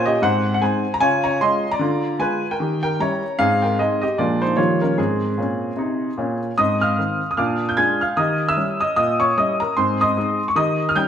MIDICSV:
0, 0, Header, 1, 2, 480
1, 0, Start_track
1, 0, Key_signature, -4, "major"
1, 0, Tempo, 398142
1, 246, Time_signature, 4, 2, 24, 8
1, 13356, End_track
2, 0, Start_track
2, 0, Title_t, "Upright piano"
2, 0, Program_c, 0, 0
2, 0, Note_on_c, 0, 46, 73
2, 0, Note_on_c, 0, 61, 72
2, 67, Note_on_c, 0, 75, 83
2, 81, Note_on_c, 0, 67, 63
2, 164, Note_off_c, 0, 46, 0
2, 177, Note_off_c, 0, 61, 0
2, 251, Note_off_c, 0, 67, 0
2, 257, Note_off_c, 0, 75, 0
2, 263, Note_on_c, 0, 44, 70
2, 275, Note_on_c, 0, 78, 92
2, 281, Note_on_c, 0, 72, 67
2, 298, Note_on_c, 0, 60, 47
2, 458, Control_c, 0, 64, 127
2, 548, Note_off_c, 0, 60, 0
2, 618, Note_off_c, 0, 72, 0
2, 636, Note_off_c, 0, 78, 0
2, 654, Note_on_c, 0, 78, 77
2, 664, Note_off_c, 0, 44, 0
2, 738, Control_c, 0, 64, 0
2, 740, Note_off_c, 0, 78, 0
2, 743, Note_on_c, 0, 80, 71
2, 745, Note_on_c, 0, 56, 34
2, 749, Note_on_c, 0, 60, 43
2, 762, Note_on_c, 0, 63, 46
2, 764, Note_on_c, 0, 72, 54
2, 1004, Note_off_c, 0, 56, 0
2, 1007, Note_off_c, 0, 60, 0
2, 1016, Note_off_c, 0, 63, 0
2, 1099, Note_off_c, 0, 72, 0
2, 1114, Note_off_c, 0, 80, 0
2, 1132, Note_on_c, 0, 82, 93
2, 1208, Note_on_c, 0, 49, 72
2, 1211, Note_on_c, 0, 80, 96
2, 1219, Note_off_c, 0, 82, 0
2, 1231, Note_on_c, 0, 73, 68
2, 1232, Note_on_c, 0, 65, 42
2, 1439, Control_c, 0, 64, 127
2, 1479, Note_off_c, 0, 73, 0
2, 1488, Note_off_c, 0, 80, 0
2, 1489, Note_off_c, 0, 65, 0
2, 1491, Note_on_c, 0, 82, 87
2, 1507, Note_on_c, 0, 73, 72
2, 1616, Note_off_c, 0, 49, 0
2, 1684, Note_off_c, 0, 73, 0
2, 1689, Note_off_c, 0, 82, 0
2, 1701, Note_on_c, 0, 61, 41
2, 1701, Note_on_c, 0, 84, 89
2, 1703, Control_c, 0, 64, 0
2, 1705, Note_on_c, 0, 56, 42
2, 1713, Note_on_c, 0, 65, 46
2, 1717, Note_on_c, 0, 75, 64
2, 1961, Note_off_c, 0, 61, 0
2, 1964, Note_off_c, 0, 56, 0
2, 1969, Note_off_c, 0, 65, 0
2, 2056, Note_off_c, 0, 75, 0
2, 2067, Note_on_c, 0, 82, 87
2, 2073, Note_off_c, 0, 84, 0
2, 2085, Note_on_c, 0, 74, 67
2, 2161, Note_on_c, 0, 50, 72
2, 2186, Note_on_c, 0, 65, 48
2, 2405, Control_c, 0, 64, 127
2, 2444, Note_off_c, 0, 65, 0
2, 2571, Note_off_c, 0, 50, 0
2, 2616, Note_off_c, 0, 74, 0
2, 2640, Note_on_c, 0, 56, 40
2, 2646, Note_on_c, 0, 59, 35
2, 2647, Note_off_c, 0, 82, 0
2, 2647, Note_on_c, 0, 80, 80
2, 2654, Note_on_c, 0, 65, 43
2, 2659, Control_c, 0, 64, 0
2, 2664, Note_on_c, 0, 71, 65
2, 2905, Note_off_c, 0, 56, 0
2, 2910, Note_off_c, 0, 59, 0
2, 2916, Note_off_c, 0, 65, 0
2, 3009, Note_off_c, 0, 71, 0
2, 3026, Note_off_c, 0, 80, 0
2, 3027, Note_on_c, 0, 79, 77
2, 3032, Note_on_c, 0, 70, 55
2, 3134, Note_on_c, 0, 51, 60
2, 3151, Note_on_c, 0, 67, 43
2, 3350, Control_c, 0, 64, 127
2, 3382, Note_off_c, 0, 70, 0
2, 3390, Note_off_c, 0, 79, 0
2, 3408, Note_off_c, 0, 67, 0
2, 3408, Note_on_c, 0, 79, 86
2, 3424, Note_on_c, 0, 70, 67
2, 3539, Note_off_c, 0, 51, 0
2, 3602, Note_off_c, 0, 70, 0
2, 3608, Note_off_c, 0, 79, 0
2, 3610, Note_on_c, 0, 55, 40
2, 3616, Control_c, 0, 64, 0
2, 3622, Note_on_c, 0, 82, 85
2, 3627, Note_on_c, 0, 64, 45
2, 3629, Note_on_c, 0, 73, 64
2, 3630, Note_on_c, 0, 61, 41
2, 3873, Note_off_c, 0, 55, 0
2, 3886, Note_off_c, 0, 64, 0
2, 3888, Note_off_c, 0, 61, 0
2, 4065, Note_off_c, 0, 73, 0
2, 4082, Note_on_c, 0, 77, 102
2, 4086, Note_on_c, 0, 44, 68
2, 4094, Note_off_c, 0, 82, 0
2, 4096, Note_on_c, 0, 68, 66
2, 4110, Note_on_c, 0, 60, 47
2, 4331, Control_c, 0, 64, 127
2, 4351, Note_off_c, 0, 68, 0
2, 4363, Note_off_c, 0, 77, 0
2, 4364, Note_on_c, 0, 79, 58
2, 4368, Note_off_c, 0, 60, 0
2, 4385, Note_on_c, 0, 70, 52
2, 4494, Note_off_c, 0, 44, 0
2, 4563, Note_off_c, 0, 70, 0
2, 4565, Note_off_c, 0, 79, 0
2, 4569, Note_on_c, 0, 56, 37
2, 4571, Note_on_c, 0, 75, 69
2, 4575, Control_c, 0, 64, 0
2, 4588, Note_on_c, 0, 60, 37
2, 4588, Note_on_c, 0, 63, 42
2, 4591, Note_on_c, 0, 68, 49
2, 4822, Note_off_c, 0, 75, 0
2, 4832, Note_off_c, 0, 56, 0
2, 4839, Note_off_c, 0, 68, 0
2, 4840, Note_on_c, 0, 75, 69
2, 4846, Note_off_c, 0, 60, 0
2, 4846, Note_off_c, 0, 63, 0
2, 4857, Note_on_c, 0, 67, 60
2, 5039, Note_off_c, 0, 67, 0
2, 5040, Note_on_c, 0, 46, 57
2, 5043, Note_on_c, 0, 74, 72
2, 5044, Note_off_c, 0, 75, 0
2, 5044, Note_on_c, 0, 53, 31
2, 5053, Note_on_c, 0, 56, 34
2, 5053, Note_on_c, 0, 58, 34
2, 5055, Note_on_c, 0, 65, 55
2, 5064, Note_on_c, 0, 62, 37
2, 5292, Control_c, 0, 64, 127
2, 5308, Note_off_c, 0, 53, 0
2, 5310, Note_off_c, 0, 65, 0
2, 5315, Note_off_c, 0, 56, 0
2, 5315, Note_off_c, 0, 58, 0
2, 5323, Note_off_c, 0, 62, 0
2, 5323, Note_off_c, 0, 74, 0
2, 5324, Note_on_c, 0, 72, 72
2, 5341, Note_on_c, 0, 63, 53
2, 5450, Note_off_c, 0, 46, 0
2, 5504, Note_on_c, 0, 73, 72
2, 5506, Note_on_c, 0, 53, 36
2, 5512, Note_on_c, 0, 51, 54
2, 5513, Note_on_c, 0, 55, 34
2, 5518, Note_on_c, 0, 58, 35
2, 5520, Note_off_c, 0, 63, 0
2, 5522, Note_on_c, 0, 65, 56
2, 5524, Note_on_c, 0, 67, 40
2, 5525, Note_off_c, 0, 72, 0
2, 5534, Control_c, 0, 64, 0
2, 5765, Control_c, 0, 64, 127
2, 5776, Note_off_c, 0, 53, 0
2, 5780, Note_off_c, 0, 55, 0
2, 5783, Note_off_c, 0, 65, 0
2, 5784, Note_off_c, 0, 58, 0
2, 5788, Note_off_c, 0, 67, 0
2, 5794, Note_off_c, 0, 73, 0
2, 5805, Note_on_c, 0, 70, 62
2, 5818, Note_on_c, 0, 61, 51
2, 5926, Note_off_c, 0, 51, 0
2, 5997, Note_on_c, 0, 44, 44
2, 5998, Note_off_c, 0, 61, 0
2, 5999, Note_on_c, 0, 68, 57
2, 6006, Note_off_c, 0, 70, 0
2, 6008, Note_on_c, 0, 60, 48
2, 6018, Control_c, 0, 64, 0
2, 6243, Control_c, 0, 64, 127
2, 6384, Note_off_c, 0, 44, 0
2, 6480, Note_on_c, 0, 46, 46
2, 6496, Control_c, 0, 64, 0
2, 6512, Note_on_c, 0, 61, 47
2, 6866, Note_off_c, 0, 46, 0
2, 6885, Note_off_c, 0, 61, 0
2, 6953, Note_on_c, 0, 48, 51
2, 6974, Note_on_c, 0, 63, 49
2, 7342, Note_off_c, 0, 48, 0
2, 7355, Note_off_c, 0, 63, 0
2, 7445, Note_on_c, 0, 46, 57
2, 7462, Note_on_c, 0, 61, 47
2, 7677, Note_off_c, 0, 60, 0
2, 7721, Note_off_c, 0, 68, 0
2, 7829, Note_off_c, 0, 46, 0
2, 7840, Note_off_c, 0, 61, 0
2, 7928, Note_on_c, 0, 87, 84
2, 7937, Note_on_c, 0, 44, 58
2, 7945, Note_on_c, 0, 75, 66
2, 7956, Note_on_c, 0, 60, 44
2, 8161, Control_c, 0, 64, 127
2, 8195, Note_off_c, 0, 75, 0
2, 8206, Note_off_c, 0, 87, 0
2, 8212, Note_off_c, 0, 60, 0
2, 8216, Note_on_c, 0, 89, 76
2, 8233, Note_on_c, 0, 77, 46
2, 8340, Note_off_c, 0, 44, 0
2, 8419, Note_on_c, 0, 51, 37
2, 8420, Control_c, 0, 64, 0
2, 8424, Note_on_c, 0, 60, 38
2, 8680, Note_off_c, 0, 51, 0
2, 8683, Note_off_c, 0, 60, 0
2, 8760, Note_off_c, 0, 77, 0
2, 8791, Note_off_c, 0, 89, 0
2, 8810, Note_on_c, 0, 87, 59
2, 8888, Note_on_c, 0, 89, 62
2, 8892, Note_on_c, 0, 46, 65
2, 8898, Note_off_c, 0, 87, 0
2, 8901, Note_on_c, 0, 86, 52
2, 8902, Note_on_c, 0, 77, 48
2, 8915, Note_on_c, 0, 62, 45
2, 9093, Control_c, 0, 64, 127
2, 9171, Note_off_c, 0, 62, 0
2, 9247, Note_off_c, 0, 77, 0
2, 9247, Note_off_c, 0, 86, 0
2, 9266, Note_off_c, 0, 89, 0
2, 9267, Note_on_c, 0, 91, 58
2, 9297, Note_off_c, 0, 46, 0
2, 9367, Note_off_c, 0, 91, 0
2, 9367, Note_on_c, 0, 56, 36
2, 9367, Note_on_c, 0, 92, 80
2, 9371, Note_on_c, 0, 62, 38
2, 9371, Note_on_c, 0, 65, 37
2, 9384, Control_c, 0, 64, 0
2, 9385, Note_on_c, 0, 80, 56
2, 9631, Note_off_c, 0, 56, 0
2, 9633, Note_off_c, 0, 62, 0
2, 9634, Note_off_c, 0, 65, 0
2, 9635, Note_off_c, 0, 80, 0
2, 9645, Note_off_c, 0, 92, 0
2, 9660, Note_on_c, 0, 89, 66
2, 9676, Note_on_c, 0, 77, 55
2, 9848, Note_off_c, 0, 77, 0
2, 9849, Note_on_c, 0, 87, 74
2, 9850, Note_on_c, 0, 51, 58
2, 9853, Note_off_c, 0, 89, 0
2, 9859, Note_on_c, 0, 82, 56
2, 9867, Note_on_c, 0, 75, 50
2, 9874, Note_on_c, 0, 67, 37
2, 10058, Control_c, 0, 64, 127
2, 10130, Note_off_c, 0, 67, 0
2, 10206, Note_off_c, 0, 82, 0
2, 10210, Note_off_c, 0, 75, 0
2, 10227, Note_off_c, 0, 87, 0
2, 10230, Note_on_c, 0, 88, 78
2, 10238, Note_on_c, 0, 76, 56
2, 10256, Note_off_c, 0, 51, 0
2, 10330, Note_on_c, 0, 55, 31
2, 10336, Control_c, 0, 64, 0
2, 10337, Note_on_c, 0, 61, 32
2, 10341, Note_on_c, 0, 64, 36
2, 10585, Note_off_c, 0, 76, 0
2, 10593, Note_off_c, 0, 55, 0
2, 10598, Note_off_c, 0, 61, 0
2, 10601, Note_off_c, 0, 64, 0
2, 10607, Note_off_c, 0, 88, 0
2, 10615, Note_on_c, 0, 87, 73
2, 10626, Note_on_c, 0, 75, 57
2, 10790, Note_off_c, 0, 87, 0
2, 10797, Note_off_c, 0, 75, 0
2, 10808, Note_on_c, 0, 87, 87
2, 10809, Note_on_c, 0, 46, 53
2, 10815, Note_on_c, 0, 75, 61
2, 11070, Note_off_c, 0, 75, 0
2, 11086, Note_off_c, 0, 87, 0
2, 11088, Note_on_c, 0, 85, 76
2, 11097, Note_on_c, 0, 73, 57
2, 11216, Note_off_c, 0, 46, 0
2, 11279, Note_off_c, 0, 73, 0
2, 11288, Note_off_c, 0, 85, 0
2, 11301, Note_on_c, 0, 55, 40
2, 11306, Note_on_c, 0, 87, 70
2, 11308, Note_on_c, 0, 61, 42
2, 11311, Note_on_c, 0, 64, 39
2, 11316, Note_on_c, 0, 75, 58
2, 11561, Note_off_c, 0, 55, 0
2, 11562, Note_off_c, 0, 75, 0
2, 11566, Note_off_c, 0, 61, 0
2, 11568, Note_off_c, 0, 64, 0
2, 11574, Note_on_c, 0, 82, 78
2, 11575, Note_off_c, 0, 87, 0
2, 11594, Note_on_c, 0, 70, 57
2, 11768, Note_off_c, 0, 70, 0
2, 11771, Note_off_c, 0, 82, 0
2, 11774, Note_on_c, 0, 84, 78
2, 11783, Note_on_c, 0, 44, 55
2, 11793, Note_on_c, 0, 72, 56
2, 11800, Note_on_c, 0, 60, 45
2, 11997, Control_c, 0, 64, 127
2, 12040, Note_off_c, 0, 72, 0
2, 12049, Note_off_c, 0, 84, 0
2, 12055, Note_off_c, 0, 60, 0
2, 12068, Note_on_c, 0, 87, 75
2, 12072, Note_on_c, 0, 75, 55
2, 12078, Note_on_c, 0, 84, 57
2, 12184, Note_off_c, 0, 44, 0
2, 12262, Note_on_c, 0, 56, 35
2, 12265, Control_c, 0, 64, 0
2, 12266, Note_on_c, 0, 60, 38
2, 12279, Note_on_c, 0, 63, 36
2, 12522, Note_off_c, 0, 56, 0
2, 12525, Note_off_c, 0, 60, 0
2, 12535, Note_off_c, 0, 63, 0
2, 12600, Note_off_c, 0, 75, 0
2, 12603, Note_off_c, 0, 84, 0
2, 12636, Note_on_c, 0, 85, 70
2, 12638, Note_off_c, 0, 87, 0
2, 12725, Note_on_c, 0, 51, 64
2, 12732, Note_off_c, 0, 85, 0
2, 12735, Note_on_c, 0, 87, 85
2, 12744, Note_on_c, 0, 82, 53
2, 12748, Note_on_c, 0, 75, 61
2, 12749, Note_on_c, 0, 67, 39
2, 12938, Control_c, 0, 64, 127
2, 13007, Note_off_c, 0, 67, 0
2, 13089, Note_off_c, 0, 82, 0
2, 13091, Note_off_c, 0, 75, 0
2, 13111, Note_off_c, 0, 87, 0
2, 13126, Note_on_c, 0, 89, 76
2, 13134, Note_off_c, 0, 51, 0
2, 13208, Note_on_c, 0, 55, 37
2, 13209, Note_on_c, 0, 91, 82
2, 13216, Note_on_c, 0, 61, 36
2, 13217, Note_off_c, 0, 89, 0
2, 13220, Control_c, 0, 64, 0
2, 13224, Note_on_c, 0, 63, 39
2, 13224, Note_on_c, 0, 79, 64
2, 13356, Note_off_c, 0, 55, 0
2, 13356, Note_off_c, 0, 61, 0
2, 13356, Note_off_c, 0, 63, 0
2, 13356, Note_off_c, 0, 79, 0
2, 13356, Note_off_c, 0, 91, 0
2, 13356, End_track
0, 0, End_of_file